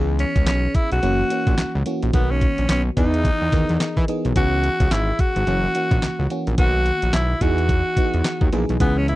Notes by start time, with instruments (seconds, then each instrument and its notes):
Already playing: analog synth bass C#2, fm electric piano E3 B3 C#4 G#4
0.19 tenor saxophone C#4, closed hi-hat
0.36 analog synth bass C#2, kick, closed hi-hat
0.47 analog synth bass B1, tenor saxophone C#4, snare, clap, closed hi-hat
0.75 tenor saxophone E4, kick, closed hi-hat
0.92 analog synth bass B1, tenor saxophone F#4, closed hi-hat
1.02 analog synth bass F#1, fm electric piano E3 A#3 C#4 F#4, closed hi-hat
1.30 fm electric piano E3 A#3 C#4 F#4, closed hi-hat
1.47 analog synth bass A#1, kick, closed hi-hat
1.58 analog synth bass C#2, snare, clap, closed hi-hat
1.75 analog synth bass C#2
1.86 fm electric piano E3 A#3 C#4 F#4, closed hi-hat
2.02 analog synth bass A#1, closed hi-hat
2.13 analog synth bass B1, fm electric piano D#3 A#3 B3 F#4, tenor saxophone B3, kick, closed hi-hat
2.31 tenor saxophone C#4
2.41 kick, closed hi-hat
2.58 analog synth bass A#1, closed hi-hat
2.69 analog synth bass B1, tenor saxophone C#4, snare, clap, closed hi-hat
2.97 analog synth bass E2, fm electric piano E3 B3 D#4 G#4, tenor saxophone D#4, kick, closed hi-hat
3.14 closed hi-hat
3.25 kick, closed hi-hat
3.42 analog synth bass E2
3.52 analog synth bass D#2, fm electric piano E3 B3 D#4 A#4, kick, snare, closed hi-hat
3.69 analog synth bass E2, closed hi-hat
3.80 snare, clap, closed hi-hat
3.97 analog synth bass E3, kick
4.08 fm electric piano E3 B3 D#4 G#4, closed hi-hat
4.25 analog synth bass B1, closed hi-hat
4.36 analog synth bass C#2, fm electric piano E3 B3 C#4 G#4, tenor saxophone F#4, kick, closed hi-hat
4.64 closed hi-hat
4.80 analog synth bass C#2, kick, closed hi-hat
4.91 analog synth bass G#1, tenor saxophone E4, snare, clap, closed hi-hat
5.19 tenor saxophone F#4, kick, closed hi-hat
5.36 analog synth bass G#1, closed hi-hat
5.47 analog synth bass F#1, fm electric piano E3 A#3 C#4 F#4, closed hi-hat
5.75 fm electric piano E3 A#3 C#4 F#4, closed hi-hat
5.91 analog synth bass A#1, kick, closed hi-hat
6.02 analog synth bass C#2, snare, clap, closed hi-hat
6.19 analog synth bass C#2
6.30 fm electric piano E3 A#3 C#4 F#4, closed hi-hat
6.47 analog synth bass A#1, closed hi-hat
6.58 analog synth bass B1, fm electric piano D#3 A#3 B3 F#4, tenor saxophone F#4, kick, closed hi-hat
6.86 closed hi-hat
7.02 analog synth bass A#1, closed hi-hat
7.13 analog synth bass B1, tenor saxophone E4, snare, clap, closed hi-hat
7.41 analog synth bass E2, fm electric piano E3 B3 D#4 G#4, tenor saxophone F#4, kick, closed hi-hat
7.58 closed hi-hat
7.69 kick, closed hi-hat
7.97 fm electric piano E3 B3 D#4 F#4, kick, closed hi-hat
8.05 fm electric piano G#4
8.14 analog synth bass E2, closed hi-hat
8.24 snare, clap, closed hi-hat
8.41 analog synth bass D#2, kick
8.52 analog synth bass A#1, fm electric piano E3 B3 D#4 G#4, closed hi-hat
8.69 analog synth bass B1, closed hi-hat
8.80 analog synth bass C#2, fm electric piano E3 B3 C#4 G#4, tenor saxophone B3, kick, closed hi-hat
8.98 tenor saxophone C#4
9.08 tenor saxophone E4, closed hi-hat